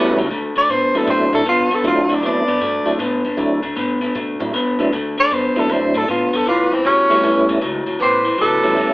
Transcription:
Already playing: clean electric guitar A2 F#3, tonewheel organ G3 A3 B3 C#4 E4, horn section B3 C#4 G4 A4 B4
0.17 upright bass C#2, clean electric guitar A2 F#3
0.30 upright bass D2, clean electric guitar D3 A3
0.56 upright bass D2, clean electric guitar D3 A3, tenor saxophone D5
0.69 upright bass A2, clean electric guitar D3 B3, tenor saxophone C5
0.94 clean electric guitar D3 B3, tonewheel organ F#3 A3 C4 D4 E4, tenor saxophone A4
1.07 upright bass B2, clean electric guitar D3 A3, tenor saxophone C5
1.33 upright bass A2, clean electric guitar D3 A3, tenor saxophone A4
1.45 upright bass F#2, clean electric guitar D3 B3, tenor saxophone F4
1.71 upright bass F#2, clean electric guitar D3 B3, tenor saxophone A4
1.84 upright bass D2, clean electric guitar D3 A3, tonewheel organ F#3 A3 C4 D4 E4, tenor saxophone F4
2.09 clean electric guitar D3 A3
2.14 tenor saxophone D4
2.22 upright bass F#2, clean electric guitar D3 B3, tenor saxophone D4
2.48 upright bass F#2, clean electric guitar D3 B3
2.61 upright bass G2, clean electric guitar D3 A3
2.85 upright bass A2, clean electric guitar D3 A3, tonewheel organ F#3 A3 C4 D4 E4
2.99 upright bass A2, clean electric guitar D3 B3
3.24 upright bass F#2, clean electric guitar D3 B3
3.37 upright bass D2, clean electric guitar D3 A3, tonewheel organ F#3 A3 C4 D4 E4
3.62 upright bass D2, clean electric guitar D3 A3
3.76 upright bass A2, clean electric guitar D3 B3
4.01 clean electric guitar D3 B3
4.15 upright bass B2, clean electric guitar D3 A3
4.40 upright bass A2, clean electric guitar D3 A3, tonewheel organ F#3 A3 C4 D4 E4
4.53 upright bass F#2, clean electric guitar D3 B3
4.79 upright bass F#2, clean electric guitar D3 B3, tonewheel organ F#3 A3 C4 D4 E4
4.93 upright bass D2, clean electric guitar D3 A3
5.18 clean electric guitar D3 A3, tenor saxophone D5
5.30 upright bass F#2, clean electric guitar D3 B3, tenor saxophone C5
5.56 upright bass F#2, clean electric guitar D3 B3, tonewheel organ F#3 A3 C4 D4 E4, tenor saxophone A4
5.69 upright bass G2, clean electric guitar D3 A3, tenor saxophone C5
5.94 upright bass A2, clean electric guitar D3 A3, tenor saxophone A4
6.08 upright bass A2, clean electric guitar D3 B3, tenor saxophone F4
6.33 upright bass F#2, clean electric guitar D3 B3, tenor saxophone A4
6.45 upright bass A1, clean electric guitar A2 E3, horn section B3 C#4 G4 B4, tenor saxophone F4
6.72 upright bass A1, clean electric guitar A2 E3, tenor saxophone C4
6.84 upright bass E2, clean electric guitar A2 F#3, horn section C#4 G4 C#5, tenor saxophone C#4
7.10 clean electric guitar A2 F#3, tonewheel organ G3 A3 B3 C#4 E4
7.23 upright bass F#2, clean electric guitar A2 E3
7.49 upright bass E2, clean electric guitar A2 E3
7.62 upright bass C#2, clean electric guitar A2 F#3
7.86 upright bass C#2, clean electric guitar A2 F#3
7.99 upright bass A1, clean electric guitar A2 E3, horn section B3 C#4 G4 B4, tenor saxophone C5
8.25 clean electric guitar A2 E3
8.38 upright bass C#2, clean electric guitar A2 F#3, horn section B3 C#4 G4 B4, tenor saxophone A4
8.63 upright bass C#2, clean electric guitar A2 F#3, tonewheel organ G3 A3 B3 C#4 E4
8.76 upright bass D2, clean electric guitar A2 E3

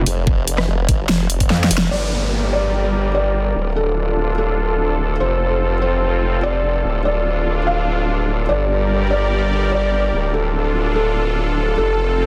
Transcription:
0.06 wobble bass F1, open hi-hat
0.27 kick
0.48 closed hi-hat
0.58 cross-stick, snare
0.68 wobble bass F1
0.89 wobble bass G1, kick, open hi-hat
1.09 wobble bass F1, snare
1.30 closed hi-hat
1.40 kick, closed hi-hat
1.50 wobble bass F2, snare
1.64 snare
1.71 wobble bass F1, open hi-hat
1.78 snare
1.91 wobble bass G1, supersaw synth G3 G4 A#4 D5, felt piano D5, crash, downlifter
2.53 felt piano D5
3.15 felt piano D5
3.56 wobble bass D1, supersaw synth D4 F4 A4
3.76 felt piano A4
4.38 felt piano A4
5.20 wobble bass F1, supersaw synth C4 F4, felt piano C5
5.82 felt piano C5
6.43 felt piano D5
6.84 wobble bass D1, supersaw synth D4 F4
7.05 felt piano D5
7.67 felt piano F5
8.49 wobble bass G1, supersaw synth G3 G4 A#4 D5, felt piano D5
9.11 felt piano D5
9.72 felt piano D5
10.13 wobble bass D1, supersaw synth D4 F4 A4
10.34 felt piano A4
10.95 felt piano A4
11.78 wobble bass F1, supersaw synth C4 F4, felt piano A4

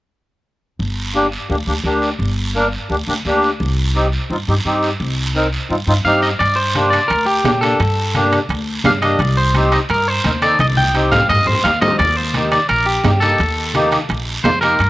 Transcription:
0.79 upright bass G1, long guiro
1.14 accordion A#3 D4 G4, short guiro
1.32 short guiro
1.50 upright bass D2, accordion A#3 D4 G4, long guiro
1.67 upright bass D2, accordion A#3 D4 G4
1.84 upright bass D2, accordion A#3 D4 G4, short guiro
2.02 short guiro
2.19 upright bass G1, long guiro
2.55 accordion A#3 D4 A#4, short guiro
2.72 short guiro
2.90 upright bass D2, accordion A#3 D4 G4, long guiro
3.07 upright bass D2, accordion A#3 D4 G4
3.25 upright bass D2, accordion A#3 D4 G4, short guiro
3.42 short guiro
3.60 upright bass C2, long guiro
3.95 accordion C4 D#4 G4, short guiro
4.12 short guiro
4.30 upright bass G2, accordion C4 D#4 F4, long guiro
4.48 upright bass G2, accordion C4 D#4 G4
4.65 upright bass G2, accordion C4 D#4 G4, short guiro
4.83 short guiro
5.00 upright bass C2, long guiro
5.35 accordion C4 D#4 A#4, short guiro
5.53 short guiro
5.70 upright bass G2, accordion C4 D#4 F4, long guiro
5.87 upright bass G2, accordion C4 D#4 F4
6.05 upright bass G2, accordion C4 D#4 G4, clean electric guitar F5, short guiro
6.22 clean electric guitar D#5, short guiro
6.39 upright bass G2, clean electric guitar D5, high conga, high timbale, long guiro
6.56 clean electric guitar C5
6.75 accordion A#3 D4 G4, high conga, high timbale, short guiro
6.90 clean electric guitar D5, high timbale, short guiro
7.08 upright bass D2, clean electric guitar A#4, high conga, high timbale, long guiro
7.26 clean electric guitar G4
7.44 upright bass A#2, accordion A#3 D4 G4, high conga, high timbale, low timbale, short guiro
7.61 accordion A#3 D4 G4, clean electric guitar A4, high timbale, short guiro
7.79 upright bass G2, high conga, high timbale, long guiro
8.14 accordion A#3 D4 G4, high conga, high timbale, short guiro
8.32 high timbale, short guiro
8.49 upright bass D2, high conga, high timbale, long guiro
8.84 upright bass G2, accordion A#3 D4 G4, clean electric guitar F5, high conga, high timbale, low timbale, short guiro
9.02 accordion A#3 D4 G4, clean electric guitar D#5, high timbale, short guiro
9.19 upright bass C2, clean electric guitar D5, high conga, high timbale, long guiro
9.37 clean electric guitar C5
9.54 accordion C4 D#4 G4, high conga, high timbale, short guiro
9.72 clean electric guitar D#5, high timbale, short guiro
9.89 upright bass G2, clean electric guitar A#4, high conga, high timbale, long guiro
10.08 clean electric guitar C5
10.24 upright bass D#2, accordion C4 D#4 A#4, high conga, high timbale, short guiro
10.42 accordion C4 D#4 A4, clean electric guitar D5, high timbale, short guiro
10.59 upright bass C2, clean electric guitar D#5, high conga, high timbale, long guiro
10.77 clean electric guitar G5, high conga
10.94 accordion C4 D#4 G4, high timbale, short guiro
11.12 clean electric guitar F5, low conga, high timbale, short guiro
11.29 upright bass G2, clean electric guitar D#5, low conga, high timbale, long guiro
11.47 clean electric guitar C5, low conga
11.64 upright bass D#2, accordion C4 D#4 G4, clean electric guitar F5, high timbale, short guiro
11.81 accordion C4 D#4 G4, clean electric guitar D#5, low conga, high timbale, short guiro
11.99 upright bass D#2, clean electric guitar D5, high conga, high timbale, long guiro
12.17 clean electric guitar C5
12.34 accordion A#3 D#4 G4, high conga, high timbale, short guiro
12.52 clean electric guitar D5, high timbale, short guiro
12.69 upright bass A#1, clean electric guitar A#4, high conga, high timbale, long guiro
12.86 clean electric guitar G4
13.04 upright bass G2, accordion A#3 D#4 G4, high conga, high timbale, low timbale, short guiro
13.20 accordion A#3 D#4 G4, clean electric guitar A4, high timbale, short guiro
13.38 upright bass D#2, high conga, high timbale, long guiro
13.74 accordion A#3 D#4 G4, high conga, high timbale, short guiro
13.91 high timbale, short guiro
14.09 upright bass A#1, high conga, high timbale, long guiro
14.44 upright bass F2, accordion A#3 D#4 F4, clean electric guitar C5, high conga, high timbale, low timbale, short guiro
14.61 accordion A#3 D#4 G4, clean electric guitar A#4, high timbale, short guiro
14.79 upright bass G2, high conga, high timbale, long guiro

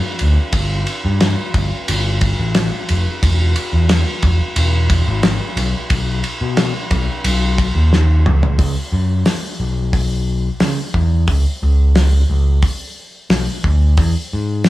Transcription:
0.19 picked electric bass D2, ride
0.53 picked electric bass G1, kick, ride
0.87 ride
1.05 picked electric bass G2
1.21 snare, ride
1.54 picked electric bass G1, kick, ride
1.88 picked electric bass G1, ride
2.21 kick, ride
2.39 picked electric bass A1
2.55 snare, ride
2.89 picked electric bass F1, ride
3.23 picked electric bass E1, kick, ride
3.56 ride
3.73 picked electric bass E2
3.89 snare, ride
4.22 picked electric bass E1, kick, ride
4.56 picked electric bass E1, ride
4.90 kick, ride
5.08 picked electric bass G#1
5.23 snare, ride
5.57 picked electric bass B1, ride
5.90 picked electric bass B1, kick, ride
6.24 ride
6.41 picked electric bass B2
6.57 snare, ride
6.91 picked electric bass B1, kick, ride
7.24 picked electric bass B1, ride
7.58 kick, ride
7.75 picked electric bass D#2
7.93 picked electric bass D#2, snare
8.26 picked electric bass C#2, mid tom
8.43 floor tom
8.59 picked electric bass C#2, kick, open hi-hat
8.92 picked electric bass F#2
9.26 snare, open hi-hat
9.60 picked electric bass B1
9.93 kick, open hi-hat
10.60 picked electric bass C#3, snare, open hi-hat
10.94 picked electric bass E2, kick
11.28 picked electric bass C#2, kick, open hi-hat
11.63 picked electric bass C#2
11.95 snare, open hi-hat
12.30 picked electric bass C#2
12.62 kick, open hi-hat
13.30 picked electric bass B1, snare, open hi-hat
13.64 picked electric bass D2, kick
13.97 picked electric bass E2, kick, open hi-hat
14.33 picked electric bass G#2
14.64 snare, open hi-hat

